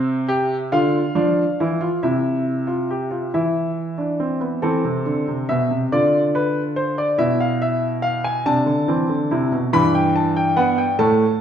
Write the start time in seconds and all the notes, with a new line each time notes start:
Already playing: C3 C4 E5
0.28 G4
0.72 D3 F4 F5
1.15 F3 D4
1.60 E3 E4
1.81 F4
2.03 C3 E4 E5
2.67 F4
2.90 G4
3.11 F4
3.34 E3 E4 E5
3.98 D4
4.20 C4
4.41 B3
4.62 E3 C4 A4
4.84 C3
5.06 D3
5.28 C3
5.49 B2 E5
5.71 C3
5.92 D3 F4 D5
6.35 B4
6.76 C5
6.98 D5
7.18 B2 E4 E5
7.40 F5
7.62 E5
8.02 F5
8.24 G#5
8.46 C3 D4 A5
8.66 D3
8.88 E3 C4
9.09 D3
9.31 C3 E4
9.52 B2
9.73 G2 E3 B5
9.95 G5
10.15 A5
10.36 G5
10.56 B3 F#5
10.78 G5
10.99 A2 A3 A5